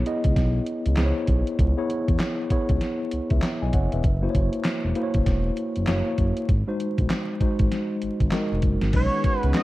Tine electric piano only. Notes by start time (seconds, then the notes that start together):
Already playing: B3 E4 G#4 C#5
0.06 B3 E4 G#4 D#5
0.98 B3 E4 G#4 C5
1.05 C#5
1.77 B3 E4 G#4 C#5
2.51 B3 E4 G#4 C#5
3.31 B4 E5
3.62 D#5 G#5
3.73 C#5 F#5
3.93 B4 E5
4.22 A#3 E4 F#4 C5
4.30 C#5
4.96 A#3 E4 F#4 C5
5.03 C#5
5.88 A#3 E4 F#4 C#5
6.67 G#3 D#4 F#4 C5
7.40 G#3 D#4 F#4 C5
8.32 G#3 D#4 F#4 A#4
8.93 G#3 C#4 D#4 B4
9.54 G#3 C#4 D#4 B4